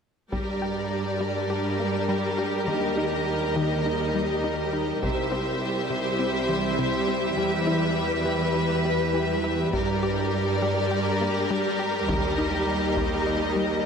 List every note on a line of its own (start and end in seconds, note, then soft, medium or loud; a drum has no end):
0.32 2.63 G2 soft
0.32 0.50 G3 medium
0.32 4.99 G3 soft
0.32 4.99 G3 medium
0.32 2.64 D4 medium
0.32 4.99 G4 soft
0.32 4.99 G4 medium
0.32 4.99 A#4 medium
0.32 4.99 A#4 soft
0.32 2.64 D5 soft
0.32 taiko soft
0.62 0.80 G4 medium
1.21 1.38 G3 medium
1.50 1.68 G4 medium
1.80 1.97 A#3 soft
2.09 2.26 G3 medium
2.38 2.56 G4 soft
2.67 5.03 D#2 soft
2.67 2.85 D#3 medium
2.67 5.03 D#4 medium
2.67 4.99 D#5 soft
2.98 3.15 D#4 medium
3.56 3.74 D#3 medium
3.86 4.03 D#4 soft
4.15 4.32 G3 soft
4.44 4.62 D#3 medium
4.73 4.91 D#4 soft
5.02 7.34 C2 medium
5.02 5.20 C3 medium
5.02 9.69 G3 medium
5.02 9.70 G3 soft
5.02 9.73 E4 medium
5.02 9.69 G4 medium
5.02 9.70 G4 soft
5.02 7.38 C5 medium
5.02 7.34 C5 soft
5.02 9.70 E5 soft
5.02 taiko medium
5.32 5.50 C4 medium
5.90 6.08 C3 medium
6.19 6.37 C4 soft
6.49 6.67 E3 medium
6.79 6.97 C3 medium
7.08 7.26 C4 medium
7.37 9.69 E2 medium
7.37 7.55 E3 medium
7.37 9.69 B4 medium
7.37 9.74 B4 medium
7.67 7.85 E4 medium
8.26 8.43 E3 medium
8.55 8.73 E4 medium
8.85 9.03 G3 soft
9.14 9.32 E3 medium
9.44 9.62 E4 medium
9.72 12.09 G2 medium
9.72 13.86 G3 medium
9.72 9.91 G3 medium
9.72 13.86 G3 medium
9.72 12.08 D4 medium
9.72 13.86 G4 medium
9.72 13.86 A#4 medium
9.72 12.05 D5 medium
9.72 taiko medium
10.03 10.21 G4 medium
10.62 10.80 G3 medium
10.91 11.09 G4 soft
11.21 11.39 A#3 soft
11.51 11.68 G3 medium
11.79 11.97 G4 medium
12.09 13.86 D#2 medium
12.09 12.26 D#3 medium
12.09 13.86 D#4 medium
12.09 13.86 D#5 soft
12.09 taiko medium
12.38 12.56 D#4 medium
12.97 13.15 D#3 medium
12.97 taiko medium
13.27 13.44 D#4 medium
13.56 13.74 G3 medium